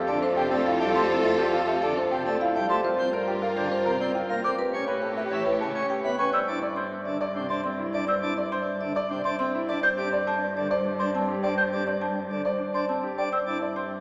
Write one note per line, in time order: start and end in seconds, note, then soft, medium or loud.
0.00 2.68 F2 medium
0.00 2.65 F4 medium
0.00 0.12 G4 medium
0.00 0.17 A4 medium
0.00 2.65 A4 medium
0.07 0.18 D3 medium
0.07 0.26 A4 medium
0.07 0.26 D5 medium
0.22 0.41 D4 medium
0.22 0.41 C5 loud
0.26 0.47 A4 medium
0.36 0.48 C3 medium
0.36 0.55 G4 medium
0.36 0.43 G5 medium
0.51 0.62 A3 medium
0.51 0.70 C4 medium
0.51 0.70 D5 medium
0.56 0.78 A4 medium
0.65 0.84 E4 medium
0.65 0.85 F5 loud
0.80 0.91 G3 medium
0.80 0.99 A4 medium
0.80 0.86 E5 medium
0.87 1.08 A4 medium
0.94 1.06 A3 medium
0.94 1.13 G4 medium
0.94 1.09 C5 medium
0.94 1.01 C6 medium
1.09 1.28 E4 medium
1.09 1.29 C5 medium
1.17 1.39 A4 medium
1.23 1.35 A3 medium
1.23 1.43 A4 medium
1.23 1.30 E5 medium
1.38 1.57 G4 medium
1.38 1.58 D5 medium
1.48 1.69 A4 medium
1.52 1.72 F4 medium
1.52 1.72 F5 medium
1.67 1.86 G4 medium
1.67 1.73 E5 medium
1.78 1.99 A4 medium
1.78 2.01 A4 medium
1.82 1.93 D3 medium
1.82 2.01 D5 medium
1.96 2.15 D4 medium
1.96 2.16 C5 medium
2.08 2.22 C3 medium
2.08 2.30 G4 medium
2.08 2.30 A4 soft
2.08 2.17 G5 medium
2.25 2.37 A3 medium
2.25 2.44 C4 medium
2.25 2.45 D5 medium
2.39 2.59 E4 medium
2.39 2.60 A4 soft
2.39 2.60 F5 medium
2.55 2.66 G3 medium
2.55 2.74 A4 medium
2.55 2.61 E5 medium
2.69 2.80 A3 medium
2.69 2.88 G4 medium
2.69 2.83 C5 medium
2.69 2.75 C6 medium
2.84 4.43 G2 medium
2.84 3.03 F4 medium
2.84 4.40 F4 medium
2.84 4.40 A#4 medium
2.84 3.06 A#4 medium
2.84 3.03 C5 medium
2.98 3.09 C4 medium
2.98 3.17 C5 medium
3.13 3.32 A#4 medium
3.13 3.39 A#4 medium
3.13 3.32 D5 medium
3.28 3.47 G4 medium
3.28 3.47 G5 medium
3.42 3.61 A#4 medium
3.42 3.48 F5 medium
3.48 3.71 A#4 medium
3.57 3.68 D3 medium
3.57 3.76 C5 medium
3.57 3.76 D5 medium
3.71 3.90 D4 medium
3.71 3.90 C5 medium
3.80 4.02 A#4 medium
3.86 3.97 C3 medium
3.86 4.05 A#4 medium
3.86 3.92 A#5 medium
4.00 4.19 C4 medium
4.00 4.12 C4 medium
4.00 4.19 D5 medium
4.12 4.34 F4 medium
4.12 4.34 A#4 soft
4.12 4.34 G5 medium
4.29 4.40 A#3 medium
4.29 4.48 C5 medium
4.29 4.35 F5 medium
4.44 4.55 C4 medium
4.44 4.63 A#4 medium
4.44 4.63 C5 medium
4.44 4.50 D6 medium
4.58 6.18 A2 medium
4.58 4.81 G4 soft
4.58 4.78 G4 medium
4.58 6.15 G4 medium
4.58 4.78 B4 medium
4.58 6.15 C#5 medium
4.73 4.84 C#4 medium
4.73 4.92 C#5 medium
4.88 5.13 G4 medium
4.88 5.07 B4 medium
4.88 5.07 C#5 medium
5.02 5.21 A4 medium
5.02 5.21 G5 medium
5.17 5.36 B4 medium
5.17 5.23 E5 medium
5.23 5.45 G4 medium
5.31 5.42 E3 medium
5.31 5.50 C#5 medium
5.46 5.65 E4 medium
5.46 5.65 B4 medium
5.54 5.77 G4 medium
5.60 5.71 C#3 medium
5.60 5.80 B4 medium
5.60 5.67 A5 medium
5.75 5.86 C#4 medium
5.75 5.94 C#4 medium
5.75 5.94 C#5 medium
5.87 6.09 G4 soft
5.87 6.09 G4 medium
5.87 6.09 G5 medium
6.04 6.15 B3 medium
6.04 6.23 C#5 medium
6.04 6.10 E5 medium
6.19 6.30 C#4 medium
6.19 6.38 B4 medium
6.19 6.25 C#6 medium
6.33 9.67 G2 medium
6.33 6.52 C5 medium
6.33 6.52 D5 medium
6.33 6.39 E6 medium
6.48 6.59 D4 medium
6.48 6.67 E4 medium
6.62 6.82 D5 medium
6.62 6.81 E5 medium
6.76 6.96 C5 medium
6.76 6.96 C6 medium
7.06 7.17 D3 medium
7.06 7.25 E5 medium
7.21 7.40 D5 medium
7.35 7.46 C3 medium
7.35 7.54 D4 medium
7.49 7.61 D4 medium
7.49 7.69 C5 medium
7.49 7.69 E5 medium
7.49 7.56 C6 medium
7.64 7.84 C4 medium
7.64 7.83 C6 medium
7.79 7.98 E4 medium
7.93 8.05 D4 medium
7.93 8.06 D5 medium
7.93 8.13 D5 medium
7.93 8.00 E5 medium
8.07 8.27 C5 medium
8.07 8.27 D5 medium
8.07 8.14 E6 medium
8.22 8.34 D4 medium
8.22 8.42 E4 medium
8.37 8.56 D5 medium
8.37 8.56 E5 medium
8.52 8.71 C5 medium
8.52 8.71 C6 medium
8.81 8.92 D3 medium
8.81 9.00 E5 medium
8.95 9.14 D5 medium
8.95 9.15 D5 medium
9.10 9.21 C3 medium
9.10 9.29 D4 medium
9.24 9.36 D4 medium
9.24 9.44 C5 medium
9.24 9.44 E5 medium
9.24 9.31 C6 medium
9.39 9.58 C4 medium
9.39 9.58 C6 medium
9.54 9.73 E4 medium
9.69 9.80 D4 medium
9.69 9.87 D5 medium
9.69 9.75 E5 medium
9.83 13.17 G2 medium
9.83 10.02 C5 medium
9.83 9.89 G6 medium
9.98 10.09 D4 medium
9.98 10.17 G4 medium
10.13 10.31 D5 medium
10.27 10.46 C5 medium
10.27 10.46 A5 medium
10.56 10.67 D3 medium
10.56 10.75 D5 medium
10.71 10.90 C5 medium
10.71 10.89 D5 medium
10.85 11.04 D4 medium
10.99 11.10 D4 medium
10.99 11.19 C5 medium
10.99 11.19 D5 medium
10.99 11.05 C6 medium
11.14 11.33 C4 medium
11.14 11.33 A5 medium
11.29 11.48 G4 medium
11.43 11.54 D4 medium
11.43 11.57 C5 medium
11.43 11.62 D5 medium
11.43 11.49 G5 medium
11.58 11.77 C5 medium
11.58 11.64 G6 medium
11.72 11.83 D4 medium
11.72 11.91 G4 medium
11.87 12.06 D5 medium
12.02 12.20 C5 medium
12.02 12.20 A5 medium
12.31 12.42 D3 medium
12.31 12.50 D5 medium
12.45 12.64 C5 medium
12.45 12.64 D5 medium
12.60 12.79 D4 medium
12.74 12.85 D4 medium
12.74 12.93 C5 medium
12.74 12.93 D5 medium
12.74 12.80 C6 medium
12.89 13.08 C4 medium
12.89 13.08 A5 medium
13.03 13.22 G4 medium
13.18 13.29 D4 soft
13.18 13.37 C5 medium
13.18 13.37 D5 soft
13.18 13.24 G5 medium
13.32 14.00 G2 medium
13.32 13.51 C5 medium
13.32 13.51 D5 medium
13.32 13.39 E6 medium
13.47 13.58 D4 medium
13.47 13.66 E4 medium
13.62 13.81 D5 medium
13.62 13.81 E5 medium
13.76 13.95 C5 medium
13.76 13.95 C6 medium